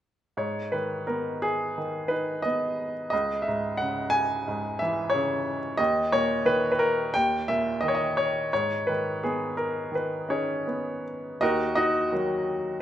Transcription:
grand piano
0.37 G#2 C#5
0.72 D#3 B4
1.07 B3 A#4
1.42 G#4
1.78 D#3
2.08 D#4 B4
2.42 B3 D#5
3.10 C#2 D#5
3.42 E5
3.48 G#2
3.77 C#3 F#5
4.10 G#5
4.48 G#2
4.79 E3 E5
5.10 C#5
5.14 C#3
5.77 D#2 D#5
6.12 A#2 C#5
6.45 D#3 B4
6.72 B4
6.79 A#4
7.14 D#2 G5
7.48 A#2 E5
7.81 D#3 D#5
7.88 C#5
7.95 D#5
8.17 C#5
8.53 G#2 C#5
8.87 D#3 B4
9.24 B3 G#4
9.57 A#4
9.92 D#3 B4
10.29 C#4 D#4 G#4 C#5
10.67 B3
11.41 D#2 D#4 F#4 A#4 D#5
11.75 D#4 F#4 D#5
12.12 D#3 F#3 D#4

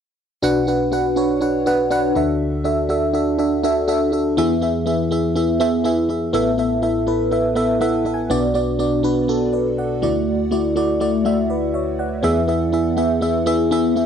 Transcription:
fm electric piano
0.43 B1 B2 D4 F#4 B4 F#5
0.67 D4 F#4 B4 F#5
0.92 D4 F#4 B4 F#5
1.16 D4 F#4 B4 C#5
1.41 D4 F#4 B4 F#5
1.66 D4 F#4 B4 F#5
1.90 D4 F#4 B4 F#5
2.15 D2 D3 D4 F#4 A4 E5
2.64 D4 F#4 A4 E5
2.89 D4 F#4 A4 E5
3.13 D4 F#4 A4 E5
3.38 D4 F#4 A4 E5
3.63 D4 F#4 A4 E5
3.88 D4 F#4 A4 E5
4.12 D4 F#4 A4 E5
4.37 E2 E3 B3 E4 G#4 E5
4.61 B3 E4 G#4 E5
4.86 B3 E4 G#4 E5
5.11 B3 E4 G#4 E5
5.35 B3 E4 G#4 E5
5.60 B3 E4 G#4 E5
5.84 B3 E4 G#4 E5
6.09 B3 E4 G#4 E5
6.33 A1 A2 B3 E4 A4 E5
6.58 B3 E4 A4 E5
6.82 B3 E4 A4 E5
7.07 B3 E4 A4 B4
7.31 B3 E4 A4 E5
7.55 B3 E4 A4 E5
7.81 B3 E4 A4 E5 F#5
8.05 B3 E4 A4 E5
8.14 G#5
8.30 B1 B2 B3 D4 F#4 D5
8.54 B3 D4 F#4 D5
8.79 B3 D4 F#4 D5
9.03 B3 D4 F#4 B4
9.28 B3 D4 F#4 A4
9.53 B4 D5
9.78 D5 F#5
10.02 D2 D3 A3 E4 F#4 D5
10.51 A3 E4 F#4 D5
10.76 A3 E4 F#4 D5
11.00 A3 E4 F#4 D5
11.25 A3 E4 F#4 E5
11.50 B4 D5
11.74 C#5 E5
11.99 D5 F#5
12.23 E2 E3 B3 E4 G#4 E5
12.48 B3 E4 G#4 E5
12.72 B3 E4 G#4 E5
12.97 B3 E4 G#4 E5
13.21 B3 E4 G#4 E5
13.46 B3 E4 G#4 E5
13.71 B3 E4 G#4 E5
13.96 B3 E4 G#4 E5

